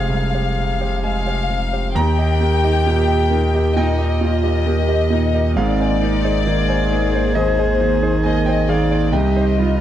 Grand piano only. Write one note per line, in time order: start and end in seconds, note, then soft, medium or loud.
0.00 1.99 F2 medium
0.00 0.58 C3 soft
0.00 1.04 G#3 soft
0.00 0.35 G4 soft
0.00 0.35 C5 soft
0.09 0.33 C2 soft
0.35 0.56 G4 soft
0.35 0.55 C5 soft
0.58 0.95 C3 soft
0.80 1.02 G4 soft
0.80 1.02 C5 soft
1.03 1.41 G#3 soft
1.03 1.92 G#5 medium
1.26 1.48 G4 soft
1.26 1.48 C5 soft
1.50 1.87 C3 soft
1.73 1.94 G4 soft
1.73 1.94 C5 soft
1.95 2.18 D#2 medium
1.95 3.73 A#5 loud
2.18 2.39 G4 medium
2.18 2.39 D#5 medium
2.40 2.77 A#3 medium
2.64 2.84 G4 soft
2.64 2.85 D#5 medium
2.87 3.23 A#2 medium
3.08 3.29 G4 medium
3.08 3.29 D#5 medium
3.30 3.67 A#3 medium
3.55 3.75 G4 medium
3.55 3.75 D#5 medium
3.76 3.98 A#2 medium
3.76 5.52 G5 medium
3.98 4.19 G4 soft
3.98 4.19 D#5 medium
4.21 4.57 A#2 medium
4.44 4.64 G4 medium
4.44 4.64 D#5 medium
4.66 5.02 A#3 medium
4.88 5.09 G4 soft
4.88 5.09 D#5 medium
5.10 5.46 A#2 medium
5.34 5.54 G4 soft
5.34 5.54 D#5 medium
5.56 5.78 G#2 medium
5.56 7.31 F5 medium
5.80 5.99 D#4 soft
5.80 6.00 C5 medium
6.03 6.38 A#3 medium
6.24 6.44 D#4 soft
6.24 6.44 C5 soft
6.47 6.82 D#3 medium
6.69 6.89 D#4 soft
6.69 6.89 C5 medium
6.92 7.27 A#3 soft
7.14 7.34 D#4 soft
7.14 7.34 C5 medium
7.35 7.57 D#2 medium
7.35 8.20 D#5 medium
7.59 7.78 D#4 soft
7.59 7.78 C5 medium
7.81 8.16 D#3 soft
8.02 8.22 D#4 medium
8.02 8.22 C5 medium
8.24 8.60 A#3 medium
8.24 8.44 G#5 medium
8.46 8.67 D#4 medium
8.46 8.67 C5 soft
8.46 8.66 G5 medium
8.69 9.04 D#3 medium
8.69 9.10 F5 medium
8.92 9.11 D#4 soft
8.92 9.11 C5 medium
9.12 9.34 C2 medium
9.12 9.81 G5 medium
9.36 9.55 D#4 medium
9.36 9.55 C5 soft
9.59 9.81 G3 medium